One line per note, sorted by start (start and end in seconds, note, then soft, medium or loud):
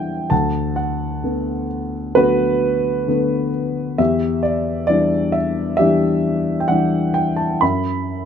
0.00 0.27 E2 soft
0.00 0.33 E3 soft
0.00 0.33 G3 soft
0.00 0.33 D4 soft
0.00 0.27 G4 soft
0.00 0.33 D5 medium
0.00 0.33 E5 medium
0.00 0.32 F#5 medium
0.00 0.32 G5 medium
0.30 3.95 D2 medium
0.30 0.75 F#5 medium
0.30 0.79 A5 medium
0.76 1.66 F#5 medium
1.24 2.14 D3 soft
1.24 2.14 A3 soft
1.24 2.15 B3 soft
2.15 3.06 D3 soft
2.15 3.06 A3 soft
2.15 3.06 B3 medium
2.15 3.95 F#4 medium
2.15 3.49 B4 medium
3.08 3.96 D3 medium
3.08 3.96 A3 soft
3.08 3.96 B3 medium
3.98 7.57 E2 medium
3.98 5.76 G4 medium
3.98 4.41 E5 medium
4.43 4.85 D5 medium
4.87 5.77 E3 medium
4.87 5.77 G3 medium
4.87 5.77 D4 medium
4.87 5.35 D5 medium
5.32 5.75 E5 medium
5.77 6.67 E3 medium
5.77 6.67 G3 soft
5.77 6.67 D4 medium
5.77 7.57 G4 medium
5.77 6.57 E5 loud
6.60 6.68 G5 medium
6.68 7.59 E3 soft
6.68 7.59 G3 soft
6.68 7.60 D4 medium
6.68 7.11 F#5 medium
7.14 7.39 G5 medium
7.36 7.59 A5 medium
7.61 8.25 F#2 medium
7.61 8.25 E5 medium
7.61 8.25 B5 medium